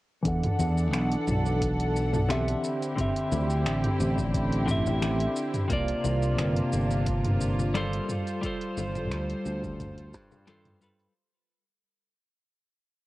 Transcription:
0.23 0.47 E2 medium
0.23 2.25 E3 medium
0.23 2.61 E3 medium
0.23 2.25 D4 medium
0.23 2.61 D4 medium
0.23 2.61 A4 medium
0.23 2.26 A4 medium
0.23 2.62 F#5 medium
0.23 kick loud
0.23 closed hi-hat medium
0.23 shaker soft
0.28 2.27 F#5 medium
0.43 closed hi-hat soft
0.43 mid tom medium
0.59 0.93 E2 loud
0.59 high conga medium
0.59 shaker medium
0.78 shaker soft
0.93 1.15 B1 medium
0.93 finger snap medium
0.93 closed hi-hat medium
0.93 shaker soft
1.12 closed hi-hat soft
1.27 2.53 B1 medium
1.27 mid tom medium
1.27 shaker medium
1.45 high conga medium
1.45 shaker soft
1.62 kick loud
1.62 closed hi-hat medium
1.62 shaker soft
1.80 closed hi-hat soft
1.96 shaker medium
2.13 mid tom medium
2.13 low conga medium
2.13 shaker soft
2.29 2.93 D3 medium
2.29 2.94 C4 medium
2.29 2.94 G4 medium
2.29 2.95 E5 medium
2.29 finger snap medium
2.29 closed hi-hat medium
2.29 high conga medium
2.29 shaker soft
2.48 closed hi-hat soft
2.64 5.68 D3 medium
2.64 5.68 C4 medium
2.64 5.68 E4 medium
2.64 5.68 G4 medium
2.64 shaker medium
2.82 closed hi-hat soft
2.82 shaker soft
2.95 4.63 D3 medium
2.95 4.64 C4 medium
2.95 4.65 G4 medium
2.95 kick loud
2.95 closed hi-hat medium
2.95 mid tom medium
2.95 shaker soft
3.01 4.66 E5 loud
3.16 closed hi-hat soft
3.32 3.66 D2 medium
3.32 high conga medium
3.32 shaker medium
3.50 shaker soft
3.66 3.87 A1 medium
3.66 finger snap loud
3.66 closed hi-hat medium
3.66 shaker soft
3.84 closed hi-hat soft
3.84 mid tom medium
4.00 5.26 A1 loud
4.00 shaker medium
4.18 kick loud
4.18 high conga medium
4.18 shaker soft
4.34 kick loud
4.34 closed hi-hat medium
4.34 shaker soft
4.53 closed hi-hat soft
4.66 5.65 D3 medium
4.66 5.66 C4 medium
4.66 5.67 G4 medium
4.66 kick medium
4.66 mid tom medium
4.66 shaker medium
4.71 5.68 E5 medium
4.86 low conga medium
4.86 shaker soft
5.02 finger snap loud
5.02 closed hi-hat medium
5.02 high conga medium
5.02 shaker soft
5.20 closed hi-hat soft
5.36 shaker medium
5.54 closed hi-hat soft
5.54 mid tom medium
5.54 shaker soft
5.68 5.92 C2 medium
5.68 7.70 C3 medium
5.68 8.07 C3 medium
5.68 7.71 A#3 medium
5.68 8.07 A#3 medium
5.68 8.07 D4 medium
5.68 11.12 F4 medium
5.68 7.72 F4 medium
5.68 kick loud
5.68 closed hi-hat medium
5.68 shaker soft
5.73 7.72 D5 medium
5.88 closed hi-hat soft
6.04 6.39 C2 medium
6.04 high conga medium
6.04 shaker medium
6.23 shaker soft
6.39 6.60 G1 medium
6.39 finger snap medium
6.39 closed hi-hat medium
6.39 mid tom medium
6.39 shaker soft
6.56 closed hi-hat soft
6.73 7.99 G1 medium
6.73 shaker medium
6.91 high conga medium
6.91 shaker soft
7.06 kick loud
7.06 closed hi-hat medium
7.06 shaker soft
7.25 closed hi-hat soft
7.25 mid tom medium
7.41 shaker medium
7.59 low conga medium
7.59 shaker soft
7.74 8.39 G3 medium
7.74 8.39 F4 medium
7.74 8.40 A4 medium
7.74 8.40 C5 loud
7.74 finger snap medium
7.74 closed hi-hat medium
7.74 high conga medium
7.74 shaker soft
7.93 closed hi-hat soft
8.09 11.13 G3 medium
8.09 11.13 A4 medium
8.09 11.13 C5 medium
8.09 mid tom medium
8.09 shaker medium
8.27 closed hi-hat soft
8.27 shaker soft
8.41 10.09 G3 medium
8.41 10.10 F4 medium
8.41 10.11 A4 medium
8.41 kick loud
8.41 closed hi-hat medium
8.41 shaker soft
8.47 10.11 C5 loud
8.61 closed hi-hat soft
8.77 9.12 G1 loud
8.77 high conga loud
8.77 shaker medium
8.95 closed hi-hat soft
8.95 mid tom medium
8.95 shaker soft
9.11 9.33 D2 medium
9.11 finger snap medium
9.11 closed hi-hat medium
9.11 shaker soft
9.30 closed hi-hat soft
9.46 10.14 D2 loud
9.46 shaker medium
9.63 kick loud
9.63 high conga medium
9.63 shaker soft
9.80 kick loud
9.80 closed hi-hat medium
9.80 mid tom medium
9.80 shaker soft
9.98 closed hi-hat soft
10.14 11.06 G2 medium
10.14 kick medium
10.14 shaker medium
10.32 low conga medium
10.32 shaker soft
10.47 10.78 G3 medium
10.47 10.78 F4 medium
10.47 10.79 A4 medium
10.47 10.79 C5 loud
10.47 finger snap medium
10.47 closed hi-hat medium
10.47 high conga medium
10.47 shaker soft
10.65 closed hi-hat soft
10.65 mid tom medium
10.81 11.12 G3 medium
10.81 11.12 F4 medium
10.81 11.12 A4 medium
10.81 11.13 B4 medium
10.81 shaker medium
10.99 closed hi-hat soft
10.99 shaker soft

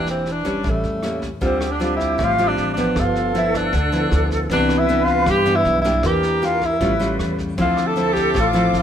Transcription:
0.00 0.60 E1 medium
0.00 0.44 E3 medium
0.00 0.25 A#3 medium
0.00 0.26 D4 medium
0.00 0.26 G4 medium
0.06 snare soft
0.11 0.33 C4 medium
0.26 snare soft
0.32 0.71 D4 medium
0.45 1.00 G3 medium
0.45 1.00 C#4 medium
0.45 kick soft
0.45 cross-stick soft
0.45 snare soft
0.63 0.82 A1 medium
0.63 1.39 A2 soft
0.63 kick medium
0.63 snare soft
0.70 1.25 A3 medium
0.83 1.37 E2 medium
0.83 snare soft
1.03 1.28 G3 soft
1.03 1.28 A#3 soft
1.03 1.28 C#4 medium
1.03 cross-stick medium
1.03 snare soft
1.22 kick soft
1.22 snare soft
1.41 2.15 D2 medium
1.41 2.17 D3 medium
1.41 1.66 G3 medium
1.41 1.66 C4 soft
1.41 1.67 F4 medium
1.41 2.91 G4 medium
1.41 kick medium
1.41 snare soft
1.45 1.73 C4 medium
1.61 cross-stick medium
1.61 snare soft
1.71 1.95 D4 medium
1.80 2.35 G3 soft
1.80 2.35 C4 soft
1.80 2.35 F4 medium
1.80 snare soft
1.96 2.24 E4 medium
1.96 kick soft
1.96 snare soft
2.18 2.55 A1 medium
2.18 2.93 A2 medium
2.18 kick medium
2.18 cross-stick medium
2.18 snare soft
2.23 2.50 F4 loud
2.38 2.74 G3 soft
2.38 2.74 C4 soft
2.38 2.74 F4 medium
2.38 snare soft
2.48 2.72 D4 medium
2.57 2.93 A1 medium
2.57 snare soft
2.74 3.32 F3 medium
2.74 3.01 D4 medium
2.74 kick soft
2.74 snare soft
2.78 3.32 B3 medium
2.96 3.69 G1 medium
2.96 3.71 G2 medium
2.96 3.36 F4 medium
2.96 4.50 A4 loud
2.96 kick medium
2.96 cross-stick medium
2.96 snare soft
3.15 snare soft
3.35 3.73 F3 medium
3.35 3.73 B3 medium
3.35 3.73 E4 medium
3.35 3.59 E4 medium
3.35 snare soft
3.54 4.32 D4 medium
3.54 kick soft
3.54 cross-stick medium
3.54 snare soft
3.73 4.09 D2 medium
3.73 4.48 D3 medium
3.73 kick medium
3.73 snare soft
3.92 4.47 F3 soft
3.92 4.47 B3 soft
3.92 4.47 E4 soft
3.92 snare soft
4.11 4.47 D2 loud
4.11 cross-stick medium
4.11 snare soft
4.31 kick soft
4.31 snare soft
4.50 5.23 C2 medium
4.50 5.25 C3 medium
4.50 4.86 E3 medium
4.50 4.86 B3 medium
4.50 4.86 D4 medium
4.50 4.80 D4 medium
4.50 5.77 B4 loud
4.50 kick medium
4.50 snare soft
4.69 cross-stick medium
4.69 snare soft
4.79 5.06 E4 medium
4.88 5.43 E3 soft
4.88 5.44 B3 medium
4.88 5.44 D4 medium
4.88 snare soft
5.04 5.32 F4 loud
5.04 kick soft
5.04 snare soft
5.26 5.62 G2 medium
5.26 6.02 G2 medium
5.26 5.57 G4 loud
5.26 kick medium
5.26 cross-stick medium
5.26 snare soft
5.46 5.81 E3 medium
5.46 5.82 B3 medium
5.46 5.82 D4 medium
5.46 snare soft
5.55 5.80 E4 loud
5.65 6.01 B1 loud
5.65 snare soft
5.81 6.39 A#3 medium
5.81 6.39 D4 medium
5.81 6.07 E4 medium
5.81 kick soft
5.81 snare soft
5.85 6.39 G4 medium
6.03 6.77 E2 medium
6.03 6.79 E3 medium
6.03 6.47 G4 loud
6.03 6.77 A#4 medium
6.03 kick medium
6.03 cross-stick medium
6.03 snare soft
6.23 snare soft
6.42 6.68 A#3 soft
6.42 6.68 D4 medium
6.42 6.67 F4 medium
6.42 6.68 G4 medium
6.42 snare soft
6.61 7.13 E4 medium
6.61 kick soft
6.61 cross-stick soft
6.61 snare soft
6.80 7.17 A1 loud
6.80 7.56 A2 medium
6.80 6.92 G3 medium
6.80 6.92 C#4 medium
6.80 6.92 F4 medium
6.80 7.38 B4 medium
6.80 kick medium
6.80 snare soft
7.00 7.54 G3 medium
7.00 7.55 C#4 soft
7.00 7.55 F4 medium
7.00 snare soft
7.19 7.55 E2 medium
7.19 cross-stick medium
7.19 snare soft
7.39 kick soft
7.39 snare soft
7.57 8.31 D2 medium
7.57 8.33 D3 medium
7.57 7.93 F3 medium
7.57 7.93 C4 medium
7.57 7.94 E4 medium
7.57 7.88 F4 medium
7.57 8.82 A4 loud
7.57 8.82 C5 medium
7.57 8.82 E5 medium
7.57 8.82 D6 medium
7.57 kick medium
7.57 snare soft
7.77 cross-stick medium
7.77 snare soft
7.87 8.15 A4 medium
7.96 8.34 F3 soft
7.96 8.35 C4 medium
7.96 8.35 E4 soft
7.96 snare soft
8.13 8.41 G4 medium
8.13 kick soft
8.13 snare soft
8.34 8.71 A1 medium
8.34 8.82 A2 medium
8.34 kick medium
8.34 cross-stick medium
8.34 snare soft
8.40 8.76 F4 loud
8.53 8.82 F3 medium
8.53 8.82 C4 soft
8.53 8.82 E4 medium
8.53 snare soft
8.73 8.82 A1 medium
8.73 snare soft
8.79 8.82 F4 medium

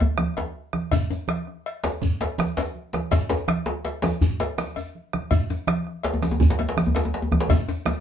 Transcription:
0.00 cowbell soft
0.00 djembe slap medium
0.00 djembe bass medium
0.18 bombo rim loud
0.18 high conga medium
0.18 djembe tone medium
0.37 cowbell soft
0.37 djembe slap medium
0.37 djembe tone medium
0.37 high conga soft
0.73 bombo rim medium
0.73 high conga medium
0.91 bombo rim soft
0.91 bombo low medium
0.91 cowbell medium
0.91 low conga medium
0.91 djembe bass medium
0.91 shekere medium
1.10 djembe slap medium
1.10 high conga soft
1.10 djembe tone medium
1.10 shekere soft
1.28 bombo rim loud
1.28 cowbell medium
1.28 high conga medium
1.47 bombo rim soft
1.47 djembe slap soft
1.66 cowbell medium
1.84 bombo rim medium
1.84 djembe slap medium
1.84 djembe slap soft
1.84 djembe tone medium
1.84 shekere soft
2.02 bombo low medium
2.02 high conga soft
2.02 low conga medium
2.02 djembe bass medium
2.02 shekere medium
2.21 bombo rim soft
2.21 cowbell medium
2.21 djembe slap medium
2.38 bombo rim medium
2.38 djembe slap medium
2.38 high conga medium
2.38 shekere soft
2.57 cowbell soft
2.57 djembe slap medium
2.57 djembe tone medium
2.57 shekere soft
2.75 high conga soft
2.93 bombo rim medium
2.93 djembe slap medium
2.93 high conga medium
3.11 bombo rim soft
3.11 bombo low medium
3.11 cowbell medium
3.11 djembe slap medium
3.11 low conga medium
3.11 djembe bass medium
3.11 shekere medium
3.29 djembe slap medium
3.29 djembe tone medium
3.29 high conga soft
3.29 shekere soft
3.48 bombo rim medium
3.48 cowbell medium
3.48 djembe slap soft
3.48 high conga medium
3.66 bombo rim soft
3.66 djembe slap medium
3.66 djembe slap soft
3.85 cowbell soft
3.85 djembe slap medium
4.02 bombo rim medium
4.02 djembe slap medium
4.02 djembe slap soft
4.02 high conga medium
4.02 djembe tone medium
4.02 shekere soft
4.21 bombo low medium
4.21 high conga soft
4.21 djembe bass medium
4.21 low conga medium
4.21 shekere medium
4.40 bombo rim soft
4.40 cowbell medium
4.40 djembe slap medium
4.58 bombo rim loud
4.58 djembe slap medium
4.58 high conga medium
4.58 shekere soft
4.76 cowbell soft
4.76 djembe tone medium
4.76 shekere soft
4.95 high conga soft
5.13 bombo rim medium
5.13 high conga medium
5.31 bombo rim soft
5.31 bombo low loud
5.31 cowbell medium
5.31 djembe bass medium
5.31 low conga medium
5.31 shekere medium
5.50 djembe slap medium
5.50 high conga soft
5.50 djembe tone medium
5.50 shekere soft
5.67 bombo rim loud
5.67 cowbell medium
5.67 high conga medium
5.87 bombo rim soft
5.87 djembe slap soft
6.03 cowbell medium
6.03 djembe slap loud
6.14 djembe tone medium
6.22 bombo rim medium
6.22 djembe slap medium
6.22 djembe slap soft
6.22 high conga medium
6.22 djembe tone medium
6.22 shekere soft
6.31 djembe tone medium
6.40 bombo low loud
6.40 high conga soft
6.40 low conga medium
6.40 djembe bass medium
6.40 shekere medium
6.50 djembe slap medium
6.59 bombo rim soft
6.59 cowbell medium
6.59 djembe slap medium
6.59 djembe tone medium
6.69 djembe slap medium
6.77 bombo rim loud
6.77 high conga medium
6.77 djembe tone medium
6.77 shekere soft
6.87 djembe bass medium
6.95 cowbell soft
6.95 djembe slap loud
6.95 djembe tone medium
6.95 shekere soft
7.05 djembe tone medium
7.14 djembe slap medium
7.14 high conga soft
7.22 djembe tone medium
7.32 bombo rim medium
7.32 high conga medium
7.32 djembe bass medium
7.40 djembe slap medium
7.49 bombo low loud
7.49 cowbell medium
7.49 high conga soft
7.49 djembe tone medium
7.49 low conga medium
7.49 djembe bass medium
7.49 shekere medium
7.69 djembe slap medium
7.69 djembe tone medium
7.69 shekere soft
7.86 bombo rim loud
7.86 cowbell soft
7.86 high conga medium
7.86 djembe tone loud
7.86 shekere soft

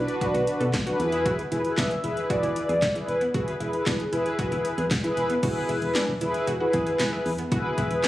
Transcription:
0.00 0.66 D4 medium
0.00 0.14 E4 medium
0.00 0.66 F#4 medium
0.00 0.66 B4 loud
0.08 closed hi-hat medium
0.21 0.31 F#4 medium
0.21 kick loud
0.21 closed hi-hat medium
0.34 0.45 B1 loud
0.34 0.53 F#4 medium
0.34 closed hi-hat medium
0.47 closed hi-hat medium
0.60 0.71 B2 loud
0.60 0.79 A4 medium
0.60 closed hi-hat soft
0.73 0.84 B1 loud
0.73 kick loud
0.73 snare loud
0.73 clap medium
0.73 closed hi-hat medium
0.87 1.00 D4 medium
0.87 1.05 F#4 medium
0.87 1.00 F#4 medium
0.87 0.98 B4 loud
0.87 closed hi-hat medium
0.99 1.30 E2 loud
0.99 1.41 E4 medium
0.99 1.41 G#4 medium
0.99 1.41 B4 loud
0.99 closed hi-hat medium
1.12 1.22 E4 medium
1.12 closed hi-hat medium
1.26 1.45 F#4 loud
1.26 kick loud
1.26 closed hi-hat medium
1.39 closed hi-hat medium
1.52 1.62 E1 loud
1.52 1.62 E4 medium
1.52 1.71 E4 medium
1.52 1.62 G#4 medium
1.52 1.62 B4 loud
1.52 closed hi-hat medium
1.65 1.95 E4 medium
1.65 1.95 G#4 medium
1.65 1.95 B4 medium
1.65 closed hi-hat soft
1.78 1.88 E1 loud
1.78 1.97 D4 medium
1.78 2.26 E5 loud
1.78 kick loud
1.78 snare loud
1.78 clap medium
1.78 closed hi-hat medium
1.91 closed hi-hat medium
2.04 2.14 E1 loud
2.04 2.75 E4 medium
2.04 2.23 E4 medium
2.04 2.75 G#4 medium
2.04 2.75 B4 medium
2.04 closed hi-hat medium
2.17 closed hi-hat medium
2.30 2.39 F#4 medium
2.30 3.10 D5 loud
2.30 kick loud
2.30 closed hi-hat medium
2.43 2.53 E1 loud
2.43 2.62 E4 medium
2.43 closed hi-hat medium
2.56 closed hi-hat medium
2.69 2.79 E2 medium
2.69 2.88 G#4 medium
2.69 closed hi-hat medium
2.82 2.92 E1 loud
2.82 kick loud
2.82 snare loud
2.82 clap medium
2.82 closed hi-hat medium
2.95 3.14 E4 medium
2.95 3.26 E4 medium
2.95 3.26 G#4 medium
2.95 3.26 B4 medium
2.95 closed hi-hat medium
3.08 3.18 E1 loud
3.08 3.36 B4 medium
3.08 closed hi-hat medium
3.21 3.31 B3 medium
3.21 closed hi-hat medium
3.34 3.45 E1 loud
3.34 3.55 E4 medium
3.34 3.53 F#4 loud
3.34 4.91 G#4 loud
3.34 3.55 G#4 medium
3.34 3.55 B4 medium
3.34 kick loud
3.34 closed hi-hat medium
3.48 closed hi-hat medium
3.60 3.71 E1 loud
3.60 3.79 E4 medium
3.60 3.71 E4 medium
3.60 3.71 G#4 medium
3.60 3.71 B4 medium
3.60 closed hi-hat medium
3.73 4.04 E4 medium
3.73 4.04 G#4 medium
3.73 4.04 B4 medium
3.73 closed hi-hat medium
3.86 3.97 E1 loud
3.86 4.06 D4 medium
3.86 kick loud
3.86 snare loud
3.86 clap medium
3.86 closed hi-hat medium
4.00 closed hi-hat medium
4.13 4.23 E1 loud
4.13 4.83 E4 loud
4.13 4.32 E4 medium
4.13 4.83 G#4 medium
4.13 4.83 B4 loud
4.13 closed hi-hat medium
4.26 closed hi-hat medium
4.39 4.48 F#4 medium
4.39 kick loud
4.39 closed hi-hat medium
4.52 4.62 E1 loud
4.52 4.71 E4 medium
4.52 closed hi-hat medium
4.65 closed hi-hat medium
4.78 4.88 E2 loud
4.78 4.97 G#4 medium
4.78 closed hi-hat medium
4.91 5.01 E1 loud
4.91 kick loud
4.91 snare loud
4.91 clap medium
4.91 closed hi-hat medium
5.04 5.34 E4 loud
5.04 5.23 E4 medium
5.04 5.34 G#4 medium
5.04 5.34 B4 loud
5.04 closed hi-hat medium
5.17 5.27 E1 loud
5.17 closed hi-hat medium
5.30 5.40 B3 medium
5.30 closed hi-hat medium
5.43 5.53 E1 loud
5.43 6.04 E4 medium
5.43 5.62 F#4 medium
5.43 6.04 G#4 medium
5.43 6.04 B4 loud
5.43 kick loud
5.43 closed hi-hat medium
5.43 crash loud
5.69 5.79 E1 loud
5.69 5.88 E4 medium
5.69 closed hi-hat medium
5.82 5.92 E1 medium
5.82 closed hi-hat soft
5.95 6.14 D4 medium
5.95 snare loud
5.95 clap medium
5.95 closed hi-hat medium
6.08 6.18 E1 loud
6.21 6.31 E1 loud
6.21 6.52 E4 loud
6.21 6.40 E4 medium
6.21 6.52 G#4 medium
6.21 6.52 B4 loud
6.21 closed hi-hat medium
6.34 closed hi-hat medium
6.47 6.58 E1 loud
6.47 6.57 F#4 medium
6.47 closed hi-hat medium
6.60 7.31 E4 medium
6.60 6.79 F#4 medium
6.60 7.31 G#4 medium
6.60 7.31 B4 loud
6.73 6.84 E2 loud
6.73 kick medium
6.73 closed hi-hat medium
6.87 7.06 G#4 medium
6.87 closed hi-hat medium
7.00 7.10 E1 loud
7.00 snare loud
7.00 clap medium
7.00 closed hi-hat medium
7.13 7.32 E4 medium
7.26 7.36 E2 loud
7.26 open hi-hat medium
7.38 7.48 B3 medium
7.38 closed hi-hat medium
7.52 7.62 E1 loud
7.52 8.08 E4 medium
7.52 7.71 F#4 loud
7.52 8.08 G#4 medium
7.52 8.08 B4 loud
7.52 kick loud
7.52 closed hi-hat medium
7.78 7.88 E1 loud
7.78 7.97 E4 medium
7.78 kick medium
7.78 closed hi-hat medium
7.91 8.01 E1 medium
7.91 closed hi-hat soft
8.04 8.08 D4 medium
8.04 snare loud
8.04 clap medium
8.04 closed hi-hat medium

